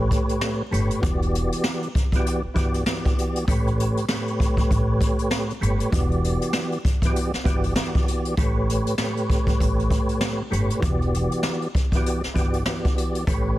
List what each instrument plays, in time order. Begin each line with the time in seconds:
Already playing: tonewheel organ A2 A3 G4 B4 C#5
0.11 kick, closed hi-hat
0.29 closed hi-hat
0.41 snare
0.71 upright bass G1, tonewheel organ A2 A3 G4 B4 C#5, closed hi-hat
0.91 closed hi-hat
1.01 upright bass E1, tonewheel organ E3 B3 F#4 G4 D5, kick, closed hi-hat
1.22 closed hi-hat
1.35 closed hi-hat
1.52 closed hi-hat
1.64 snare
1.83 closed hi-hat
1.95 kick, closed hi-hat
2.12 tonewheel organ E3 B3 F#4, kick, closed hi-hat
2.16 tonewheel organ G4 D5
2.26 closed hi-hat
2.44 muted upright bass stroke
2.54 upright bass G1, tonewheel organ E3 B3 F#4 G4 D5, kick, closed hi-hat
2.74 closed hi-hat
2.86 tonewheel organ E3 B3 F#4 G4 D5, snare
3.05 kick, closed hi-hat
3.15 tonewheel organ E3 B3 F#4 G4 D5, closed hi-hat
3.36 closed hi-hat
3.47 upright bass A1, tonewheel organ A2 A3 G4 B4 C#5, kick, closed hi-hat
3.67 closed hi-hat
3.80 closed hi-hat
3.97 closed hi-hat
4.08 tonewheel organ A2 A3 G4 B4 C#5, snare
4.28 closed hi-hat
4.40 kick, closed hi-hat
4.57 kick, closed hi-hat
4.71 upright bass A1, kick, closed hi-hat
5.01 kick, closed hi-hat
5.19 closed hi-hat
5.31 snare
5.50 closed hi-hat
5.60 upright bass G1, tonewheel organ A2 A3 G4 B4 C#5, closed hi-hat
5.80 closed hi-hat
5.90 upright bass E1, tonewheel organ E3 B3 F#4 G4 D5, kick, closed hi-hat
6.12 closed hi-hat
6.24 closed hi-hat
6.42 closed hi-hat
6.53 snare
6.72 closed hi-hat
6.85 kick, closed hi-hat
7.02 tonewheel organ E3 B3 F#4, kick, closed hi-hat
7.06 tonewheel organ G4 D5
7.16 closed hi-hat
7.33 muted upright bass stroke, snare
7.44 upright bass G1, tonewheel organ E3 B3 F#4 G4 D5, kick, closed hi-hat
7.64 closed hi-hat
7.76 tonewheel organ E3 B3 F#4 G4 D5, snare
7.95 kick, closed hi-hat
8.05 tonewheel organ E3 B3 F#4 G4 D5, closed hi-hat
8.25 closed hi-hat
8.37 upright bass A1, tonewheel organ A2 A3 G4 B4 C#5, kick, closed hi-hat
8.70 closed hi-hat
8.87 closed hi-hat
8.98 tonewheel organ A2 A3 G4 B4 C#5, snare
9.17 closed hi-hat
9.30 kick, closed hi-hat
9.47 kick, closed hi-hat
9.60 upright bass A1, kick, closed hi-hat
9.79 closed hi-hat
9.90 kick, closed hi-hat
10.09 closed hi-hat
10.21 snare
10.50 upright bass G1, tonewheel organ A2 A3 G4 B4 C#5, closed hi-hat
10.70 closed hi-hat
10.80 upright bass E1, tonewheel organ E3 B3 F#4 G4 D5, kick, closed hi-hat
11.02 closed hi-hat
11.14 closed hi-hat
11.32 closed hi-hat
11.43 snare
11.62 closed hi-hat
11.75 kick, closed hi-hat
11.92 tonewheel organ E3 B3 F#4, kick, closed hi-hat
11.96 tonewheel organ G4 D5
12.06 closed hi-hat
12.23 muted upright bass stroke, snare
12.34 upright bass G1, tonewheel organ E3 B3 F#4 G4 D5, kick, closed hi-hat
12.54 closed hi-hat
12.66 tonewheel organ E3 B3 F#4 G4 D5, snare
12.85 kick, closed hi-hat
12.95 tonewheel organ E3 B3 F#4 G4 D5, closed hi-hat
13.15 closed hi-hat
13.27 upright bass A1, tonewheel organ A2 A3 G4 B4 C#5, kick, closed hi-hat